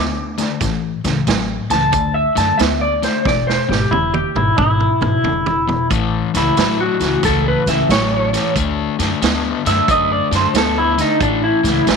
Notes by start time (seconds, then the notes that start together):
Already playing: D2 D3 B3 D6
0.38 D3 A3, snare, closed hi-hat
0.61 A1 A2 E3, kick, snare, closed hi-hat
1.04 C#2 A2 E3, snare, closed hi-hat
1.27 A1 A2 F#3, snare, closed hi-hat
1.70 C#2 A2 E3 A5, snare, closed hi-hat
1.92 D2 D3 A3, kick, closed hi-hat
2.14 E5
2.35 F#2 D3 A3 A5, snare, closed hi-hat
2.58 D2 D3 B3 E5, snare, closed hi-hat
2.81 D5
3.03 D3 A3 C5, snare, closed hi-hat
3.25 E1 E2 B2 D5, kick, snare
3.47 C5, snare
3.69 G#1 E2 B2 G4, snare
3.91 E1 E2 C#3 E4, high tom
4.14 G4, high tom
4.35 G#1 E2 B2 E4, mid tom
4.58 G#1 E2 B2 E4, kick, mid tom
4.80 mid tom
5.01 G#1 E2 B2, mid tom
5.24 E1 E2 C#3, floor tom
5.46 floor tom
5.68 E2 B2, floor tom
5.90 A1 A2 E3, kick, closed hi-hat
6.34 C#2 A2 E3 E4, snare, closed hi-hat
6.57 A1 A2 F#3, snare, closed hi-hat
6.80 F#4
7.00 C#2 A2 E3, snare, closed hi-hat
7.23 C#2 A2 E3 A4, kick, snare, closed hi-hat
7.48 B4
7.66 C#2 A2 E3 E5, snare, closed hi-hat
7.89 A1 A2 F#3 C#5, snare, closed hi-hat
8.33 A2 E3, snare, closed hi-hat
8.56 D2 D3 A3, kick, closed hi-hat
8.99 F#2 D3 A3, snare, closed hi-hat
9.22 D2 D3 B3, snare, closed hi-hat
9.65 F#2 D3 A3 E5, snare, closed hi-hat
9.88 F#2 D3 A3 D#5, kick, closed hi-hat
10.12 D5
10.31 F#2 D3 A3, snare, closed hi-hat
10.36 C5
10.54 D2 D3 B3 A4, snare, closed hi-hat
10.78 E4
10.98 D3 A3 D#4, snare, closed hi-hat
11.20 A1 A2 E3 D4, kick, closed hi-hat
11.44 E4
11.63 C#2 A2 E3, snare, closed hi-hat
11.86 A1 A2 F#3, snare, closed hi-hat